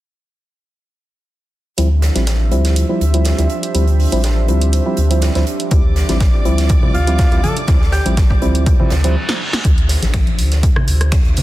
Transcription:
1.78 sub bass D2, synth stab F3 G3 C4 E4, analog synth pad F3 D4 G4 C5 E5, closed hi-hat
2.02 snare, closed hi-hat
2.15 sub bass A1, synth stab F3 G3 C4 E4, snare, closed hi-hat
2.27 snare, closed hi-hat
2.51 sub bass D2, synth stab F3 G3 C4 E4, closed hi-hat
2.65 snare, closed hi-hat
2.76 closed hi-hat
2.89 synth stab F3 G3 C4 E4
3.01 sub bass D2, closed hi-hat
3.14 synth stab F3 G3 C4 E4, closed hi-hat
3.25 snare, closed hi-hat
3.38 sub bass D2, synth stab F3 G3 C4 E4, closed hi-hat
3.50 closed hi-hat
3.63 closed hi-hat
3.74 sub bass D2, synth stab F3 G3 C4 E4, closed hi-hat
3.87 closed hi-hat
4.00 open hi-hat
4.12 sub bass A1, synth stab F3 G3 C4 E4, closed hi-hat
4.24 snare, closed hi-hat
4.48 sub bass D2, synth stab F3 G3 C4 E4, closed hi-hat
4.61 closed hi-hat
4.73 closed hi-hat
4.86 synth stab F3 G3 C4 E4
4.97 sub bass D2, closed hi-hat
5.11 synth stab F3 G3 C4 E4, closed hi-hat
5.22 snare, closed hi-hat
5.35 sub bass D2, synth stab F3 G3 C4 E4, snare, closed hi-hat
5.47 closed hi-hat
5.60 closed hi-hat
5.71 sub bass D2, synth stab F3 G3 C4 E4, violin section D5 D6, kick, closed hi-hat
5.96 snare, closed hi-hat
6.09 sub bass A1, synth stab F3 G3 C4 E4, snare, closed hi-hat, high conga
6.20 kick, snare, closed hi-hat
6.45 sub bass D2, synth stab F3 G3 C4 E4, closed hi-hat
6.58 snare, closed hi-hat
6.69 kick, closed hi-hat
6.82 synth stab F3 G3 C4 E4, high conga, low conga
6.94 sub bass D2, alto saxophone F4, closed hi-hat
7.07 synth stab F3 G3 C4 E4, closed hi-hat
7.18 kick, snare, closed hi-hat
7.31 sub bass D2, synth stab F3 G3 C4 E4, closed hi-hat
7.43 alto saxophone A4, closed hi-hat, high conga, low conga
7.57 closed hi-hat
7.68 sub bass D2, synth stab F3 G3 C4 E4, kick, snare, closed hi-hat
7.82 snare
7.92 alto saxophone G4, snare, closed hi-hat
8.05 sub bass A1, synth stab F3 G3 C4 E4, closed hi-hat, high conga
8.17 kick, snare, closed hi-hat
8.30 kick
8.42 sub bass D2, synth stab F3 G3 C4 E4, closed hi-hat
8.55 closed hi-hat
8.66 kick, closed hi-hat, reverse cymbal
8.79 synth stab F3 G3 C4 E4, high conga, low conga
8.90 sub bass D2, snare, closed hi-hat
9.04 synth stab F3 G3 C4 E4, closed hi-hat
9.29 snare
9.53 snare
9.65 sub bass D2, analog synth pad D4 F4 G4 C5 E5, kick, closed hi-hat
9.78 closed hi-hat
9.89 snare, closed hi-hat, open hi-hat
10.02 sub bass A1, snare, closed hi-hat, high conga
10.14 finger snap, kick, snare, closed hi-hat, high conga
10.27 closed hi-hat, high conga
10.39 sub bass D2, closed hi-hat, open hi-hat
10.52 snare, closed hi-hat
10.63 kick, closed hi-hat
10.76 cross-stick, low conga
10.88 sub bass D2, closed hi-hat, open hi-hat
11.01 cross-stick, closed hi-hat
11.12 finger snap, kick, snare, closed hi-hat
11.25 sub bass D2, closed hi-hat
11.37 closed hi-hat, open hi-hat, low conga

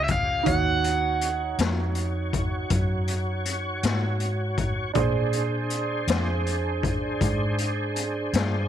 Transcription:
Already playing: fingered electric bass C#2, tonewheel organ C#4 F4 G4, grand piano F4 G4 C#5
0.04 overdriven electric guitar E5, closed hi-hat
0.09 overdriven electric guitar F5, kick
0.43 fingered electric bass D#2, grand piano D#4 F#4 C#5, tonewheel organ F#4, kick, closed hi-hat
0.47 tonewheel organ C#5, overdriven electric guitar F#5
0.84 closed hi-hat
1.21 closed hi-hat
1.58 fingered electric bass F2, snare, closed hi-hat
1.95 closed hi-hat
2.33 kick, closed hi-hat
2.70 fingered electric bass F#2, kick, closed hi-hat
3.08 closed hi-hat
3.45 closed hi-hat
3.83 fingered electric bass G#2, snare, closed hi-hat
4.20 closed hi-hat
4.58 kick, closed hi-hat
4.94 fingered electric bass A#2, grand piano D4 G#4, tonewheel organ D4 G#4 C5, kick, closed hi-hat
4.98 grand piano C5
5.33 closed hi-hat
5.70 closed hi-hat
6.07 fingered electric bass F2, snare, closed hi-hat
6.46 closed hi-hat
6.83 kick, closed hi-hat
7.21 fingered electric bass G#2, kick, closed hi-hat
7.58 closed hi-hat
7.96 closed hi-hat
8.33 fingered electric bass G2, snare, closed hi-hat

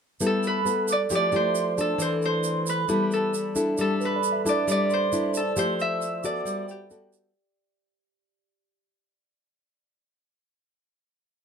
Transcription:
0.20 nylon-string guitar G3 B3 E4 A4, flute section A5, shaker
0.26 harp A4
0.43 harp B4, flute section B5, shaker
0.65 nylon-string guitar B3 E4 A4, shaker
0.88 flute section D6, shaker
0.92 harp D5
1.10 nylon-string guitar F3 A3 E4 G4, flute section D6, shaker
1.15 harp D5
1.32 nylon-string guitar A3 E4 G4, harp C5, flute section C6, shaker
1.55 shaker
1.78 nylon-string guitar A3 D4 A4, harp A4, flute section A5, shaker
1.98 nylon-string guitar E3, harp C5, flute section C6, shaker
2.22 harp C5, flute section C6, shaker
2.44 shaker
2.66 harp B4, flute section B5, shaker
2.89 nylon-string guitar G3 B3 E4 A4, shaker
3.11 harp A4, flute section A5, shaker
3.34 shaker
3.56 nylon-string guitar D4 E4 A4, shaker
3.78 nylon-string guitar G3, harp A4, flute section A5, shaker
3.99 tine electric piano B4, flute section B5, shaker
4.05 harp B4
4.16 tine electric piano D5
4.23 shaker
4.32 tine electric piano E5
4.45 nylon-string guitar D4 E4 A4, flute section D6, shaker
4.49 harp D5
4.68 nylon-string guitar G3, harp D5, flute section D6, shaker
4.89 flute section C6, shaker
4.93 harp C5
5.12 nylon-string guitar D4 E4 A4, shaker
5.33 flute section A5, shaker
5.37 harp A4
5.56 nylon-string guitar F3 A3 E4 G4, harp C5, flute section C6, shaker
5.77 flute section E6, shaker
5.81 harp E5
6.01 shaker
6.22 nylon-string guitar B3 F#4 A4, harp D5, flute section D6, shaker
6.45 nylon-string guitar G3, shaker
6.66 flute section G5, shaker
6.71 harp G4
6.90 nylon-string guitar B3 F#4 A4, shaker
7.13 shaker

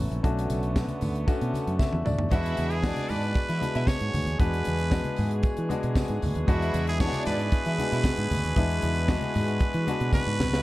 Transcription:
Already playing: french horn section F#3 A3 C#4, grand piano B3 C#4 E4 F#4
0.11 fingered electric bass A#1, closed hi-hat
0.23 fingered electric bass B1, french horn section D3 B3, grand piano A3 C#4 D4 F#4, kick, closed hi-hat, muted conga
0.37 closed hi-hat, muted conga
0.50 fingered electric bass B1, closed hi-hat, tambourine, high conga
0.63 closed hi-hat
0.76 kick, snare, tambourine, muted conga
0.88 closed hi-hat, muted conga, high conga
1.01 fingered electric bass D2, open hi-hat, tambourine, low conga
1.15 closed hi-hat
1.26 grand piano A3 C#4 D4 F#4, kick, closed hi-hat, tambourine, muted conga
1.41 fingered electric bass B2, closed hi-hat
1.54 closed hi-hat, tambourine, high conga
1.67 fingered electric bass F#2, closed hi-hat
1.79 grand piano E5, kick, snare, tambourine, muted conga, high conga
1.93 fingered electric bass E2, high tom
2.05 fingered electric bass D2, grand piano D5, mid tom, tambourine, high conga, low conga
2.19 fingered electric bass D#2, floor tom
2.31 fingered electric bass E2, french horn section E3 D4 F#4 G#4, grand piano G#3 B3 D4 F#4, string section E4 E5, muted trumpet F#4, kick, closed hi-hat, tambourine, low conga
2.46 closed hi-hat
2.57 fingered electric bass E2, closed hi-hat, tambourine, high conga
2.70 muted trumpet G#4, closed hi-hat
2.82 grand piano G#3 B3 D4 F#4, string section D4 D5, kick, snare, tambourine, muted conga
2.96 snare, closed hi-hat, muted conga, high conga
3.09 fingered electric bass G#2, muted trumpet B4, open hi-hat, tambourine, low conga
3.23 closed hi-hat
3.35 kick, closed hi-hat, tambourine, muted conga
3.48 fingered electric bass E3, string section E4 E5, closed hi-hat
3.60 grand piano G#3 B3 D4 F#4, closed hi-hat, tambourine, high conga
3.75 fingered electric bass B2, string section E4 E5, closed hi-hat
3.87 muted trumpet C#5, kick, snare, tambourine, muted conga, high conga
4.00 fingered electric bass G#2, closed hi-hat, muted conga
4.14 fingered electric bass D2, open hi-hat, tambourine, high conga, low conga
4.27 fingered electric bass D#2, closed hi-hat
4.38 fingered electric bass E2, grand piano G#3 B3 D4 F#4, muted trumpet B4, kick, closed hi-hat, tambourine, muted conga, low conga
4.54 closed hi-hat
4.65 fingered electric bass E2, closed hi-hat, tambourine, high conga
4.78 closed hi-hat
4.90 grand piano G#3 B3 D4 F#4, kick, snare, tambourine, muted conga
5.04 closed hi-hat, muted conga, high conga
5.16 fingered electric bass G#2, open hi-hat, tambourine, low conga
5.31 closed hi-hat
5.43 kick, closed hi-hat, tambourine, muted conga
5.57 fingered electric bass E3, closed hi-hat
5.69 grand piano G#3 B3 D4 F#4, closed hi-hat, tambourine, high conga
5.83 fingered electric bass B2, closed hi-hat
5.96 kick, snare, tambourine, muted conga, high conga
6.08 fingered electric bass G#2, closed hi-hat, muted conga
6.22 fingered electric bass D2, open hi-hat, tambourine, high conga, low conga
6.35 fingered electric bass D#2, closed hi-hat
6.47 fingered electric bass E2, grand piano G#3 B3 D4 F#4, string section E4 E5, muted trumpet F#4, kick, closed hi-hat, tambourine, muted conga, low conga
6.62 closed hi-hat, muted conga
6.74 fingered electric bass E2, closed hi-hat, tambourine, high conga
6.87 muted trumpet G#4, closed hi-hat
7.00 grand piano G#3 B3 D4 E4, string section D4 D5, muted trumpet C#5, kick, snare, tambourine
7.07 grand piano F#4
7.12 snare, closed hi-hat, muted conga, high conga
7.25 fingered electric bass G#2, muted trumpet B4, open hi-hat, tambourine, low conga
7.40 closed hi-hat
7.52 muted fingered electric bass stroke, kick, closed hi-hat, tambourine
7.65 fingered electric bass E3, string section E4 E5, closed hi-hat, muted conga
7.78 grand piano G#3 B3 D4 F#4, closed hi-hat, tambourine, high conga
7.92 fingered electric bass B2, string section E4 E5, closed hi-hat
8.04 kick, snare, tambourine, muted conga, high conga
8.16 fingered electric bass G#2, closed hi-hat
8.31 fingered electric bass D2, open hi-hat, tambourine, high conga, low conga
8.44 fingered electric bass D#2, closed hi-hat
8.56 fingered electric bass E2, grand piano G#3 B3 D4 E4, kick, closed hi-hat, tambourine, low conga
8.71 closed hi-hat
8.82 fingered electric bass E2, closed hi-hat, tambourine, high conga
8.95 closed hi-hat
9.08 grand piano G#3 B3 D4 F#4, kick, snare, tambourine
9.21 snare, closed hi-hat, muted conga, high conga
9.34 fingered electric bass G#2, open hi-hat, tambourine, low conga
9.48 closed hi-hat
9.60 kick, closed hi-hat, tambourine, muted conga
9.74 fingered electric bass E3, closed hi-hat, muted conga
9.86 grand piano G#3 B3 D4 F#4, closed hi-hat, tambourine, high conga
10.00 fingered electric bass B2, closed hi-hat
10.13 muted trumpet B4, kick, snare, tambourine, muted conga, high conga
10.27 fingered electric bass G#2
10.40 fingered electric bass C2, snare, tambourine, high conga, low conga
10.53 fingered electric bass C#2, snare

